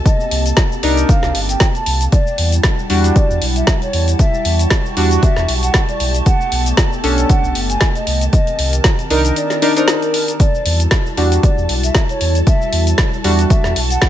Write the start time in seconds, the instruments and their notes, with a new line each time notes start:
Already playing: ambient pad A#3 C4 G4, violin section A4 A5
0.06 flute D#5, kick, closed hi-hat, shaker
0.20 shaker
0.31 sub bass C2, open hi-hat
0.46 closed hi-hat, shaker
0.57 kick, snare, closed hi-hat, shaker
0.72 shaker
0.83 sub bass C2, synth stab D4 D#4 A#4, open hi-hat
0.97 closed hi-hat, shaker
1.09 flute F5, kick, closed hi-hat, shaker
1.23 sub bass C2, snare, shaker
1.35 sub bass G1, open hi-hat
1.49 flute G5, closed hi-hat, shaker
1.60 kick, snare, closed hi-hat, shaker
1.75 flute A5, closed hi-hat, shaker
1.86 sub bass C2, open hi-hat
2.01 closed hi-hat, shaker
2.12 ambient pad G3 E4 F#5, violin section G4 A5, flute D5, kick, closed hi-hat, shaker
2.27 shaker
2.38 sub bass E2, open hi-hat
2.52 closed hi-hat, shaker
2.63 kick, snare, closed hi-hat, shaker
2.79 shaker
2.90 sub bass E2, synth stab G3 D4 F#4, open hi-hat
3.04 closed hi-hat, shaker
3.16 flute D5, kick, closed hi-hat, shaker
3.30 sub bass E2, shaker
3.42 sub bass B1, open hi-hat
3.56 flute E5, closed hi-hat, shaker
3.67 kick, snare, closed hi-hat, shaker
3.82 flute C#5, closed hi-hat, shaker
3.93 sub bass E2, open hi-hat
4.08 closed hi-hat, shaker
4.19 flute E5, ambient pad C#6, kick, closed hi-hat, shaker
4.34 shaker
4.45 sub bass E2, open hi-hat
4.59 closed hi-hat, shaker
4.70 kick, snare, closed hi-hat, shaker
4.86 shaker
4.97 sub bass E2, synth stab G3 D4 F#4, open hi-hat
5.11 closed hi-hat, shaker
5.23 flute E5, kick, closed hi-hat, shaker
5.37 sub bass E2, snare, shaker
5.49 sub bass B1, open hi-hat
5.63 flute F#5, closed hi-hat, shaker
5.74 kick, snare, closed hi-hat, shaker
5.88 flute D5, closed hi-hat, shaker
6.00 sub bass B1, ambient pad A3 B3 A4, open hi-hat
6.15 closed hi-hat, shaker
6.26 flute F#5, kick, closed hi-hat, shaker
6.41 shaker
6.52 sub bass B1, open hi-hat
6.66 closed hi-hat, shaker
6.77 kick, snare, closed hi-hat, shaker
6.93 shaker
7.04 sub bass B1, synth stab C#4 D4 A4, open hi-hat
7.18 closed hi-hat, shaker
7.29 flute F#5, kick, closed hi-hat, shaker
7.44 sub bass B1, shaker
7.55 sub bass F#1, open hi-hat
7.69 flute G#5, closed hi-hat, shaker
7.81 kick, snare, closed hi-hat, shaker
7.95 flute D#5, closed hi-hat, shaker
8.07 sub bass C2, ambient pad D#3 C4 A#4, open hi-hat
8.21 closed hi-hat, shaker
8.33 flute D#5, kick, closed hi-hat, shaker
8.47 closed hi-hat, shaker
8.59 sub bass C2, open hi-hat
8.73 closed hi-hat, shaker
8.84 kick, snare, closed hi-hat, shaker
8.99 closed hi-hat, shaker
9.10 sub bass C2, synth stab D4 D#4 A#4, open hi-hat
9.25 closed hi-hat, shaker
9.36 flute D5, closed hi-hat, shaker
9.50 snare, closed hi-hat, shaker
9.62 synth stab D4 D#4 A#4, open hi-hat
9.76 synth stab D4 D#4 A#4, flute C5, closed hi-hat, shaker
9.88 snare, closed hi-hat, shaker
10.02 flute A#4, closed hi-hat, shaker
10.14 open hi-hat
10.28 closed hi-hat, shaker
10.39 ambient pad G3 E4 F#4, violin section A4 A5, flute D5, kick, closed hi-hat, shaker
10.55 shaker
10.66 sub bass E2, open hi-hat
10.80 closed hi-hat, shaker
10.91 kick, snare, closed hi-hat, shaker
11.06 shaker
11.17 sub bass E2, synth stab G3 D4 F#4, open hi-hat
11.32 closed hi-hat, shaker
11.43 flute D5, kick, closed hi-hat, shaker
11.58 sub bass E2, shaker
11.69 sub bass B1, open hi-hat
11.83 flute E5, closed hi-hat, shaker
11.95 kick, snare, closed hi-hat, shaker
12.09 flute C#5, closed hi-hat, shaker
12.21 sub bass E2, open hi-hat
12.35 closed hi-hat, shaker
12.47 flute E5, kick, closed hi-hat, shaker
12.62 shaker
12.73 sub bass E2, open hi-hat
12.87 closed hi-hat, shaker
12.98 kick, snare, closed hi-hat, shaker
13.13 shaker
13.24 sub bass E2, synth stab G3 D4 F#4, open hi-hat
13.39 closed hi-hat, shaker
13.50 flute E5, kick, closed hi-hat, shaker
13.64 sub bass E2, snare, shaker
13.76 sub bass B1, open hi-hat
13.90 flute F#5, closed hi-hat, shaker
14.02 kick, snare, closed hi-hat, shaker